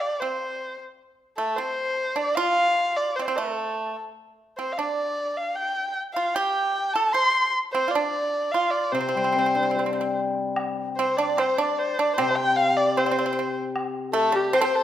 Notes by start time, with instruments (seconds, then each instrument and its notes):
Already playing: pipa G4
0.01 erhu D5
0.20 pipa C4, erhu C5
1.37 pipa A3, erhu A4
1.57 pipa C4, erhu C5
2.16 pipa D4, erhu D5
2.35 pipa F4, erhu F5
2.97 erhu D5
3.16 pipa C4, erhu C5
3.22 erhu C5 D5
3.28 pipa C4
3.36 pipa A3, erhu A4
4.58 pipa C4, erhu C5
4.72 erhu F5
4.78 pipa D4, erhu D5
5.37 erhu F5
5.55 erhu G5
6.14 pipa F4, erhu F5
6.34 pipa G4, erhu G5
6.93 pipa A4, erhu A5
7.13 pipa C5, erhu C6
7.72 pipa C4, erhu C5
7.88 pipa F4, erhu D5
7.95 pipa D4
8.52 pipa F4, erhu F5
8.71 erhu D5
8.92 hammered dulcimer C3, pipa C4, erhu C5
9.01 pipa C4
9.09 pipa C4
9.15 hammered dulcimer G3, pipa C4
9.24 pipa C4
9.32 pipa C4, hammered dulcimer C4
9.39 pipa C4
9.46 pipa C4
9.55 pipa C4, hammered dulcimer D4
9.63 pipa C4
9.71 pipa C4
9.76 pipa C4, hammered dulcimer G4
9.86 pipa C4
9.93 pipa C4
10.01 pipa C4
10.56 high woodblock
10.97 pipa C4, erhu C5, dizi C5
11.17 pipa D4, erhu D5, dizi D5
11.37 pipa C4, erhu C5, dizi C5, high woodblock
11.58 pipa D4, erhu D5, dizi D5
11.79 erhu C5
11.99 pipa D4, erhu D5, dizi D5
12.16 hammered dulcimer C3, pipa C4, erhu C5, dizi C5, high woodblock
12.31 dizi A5
12.35 erhu G5, dizi G5
12.56 erhu F5
12.77 erhu D5, dizi D5
12.97 pipa C4, erhu C5, dizi C5, high woodblock
13.05 pipa C4, dizi D5
13.11 pipa C4, dizi C5
13.19 pipa C4, dizi D5
13.26 pipa C4, dizi C5
13.33 pipa C4
13.39 pipa C4
13.76 high woodblock
14.12 pipa A3, dizi A4, erhu A4
14.32 pipa G3, dizi G4, erhu G4
14.52 pipa C4, dizi C5, erhu C5, high woodblock
14.61 pipa C4, erhu A4 C5, dizi C5
14.75 erhu A4